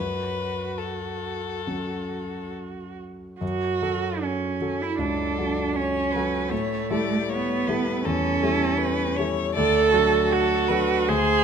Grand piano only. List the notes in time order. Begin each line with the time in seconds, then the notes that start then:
Already playing: F#2
1.67 F#3 C#4 A4
3.41 F#2
3.82 F#3 F#4 A4
4.61 F#3 F#4 A4
4.98 C#2
5.38 F#3 F#4 A4
6.15 F#3 F#4 A4
6.51 A2
6.90 G3 E4 A4
7.68 G3 E4 A4
8.06 E2
8.43 G3 E4 A4
9.18 G3 E4 A4
9.56 D2
9.93 F#3 D4 A4
10.70 F#3 D4 A4
11.08 D2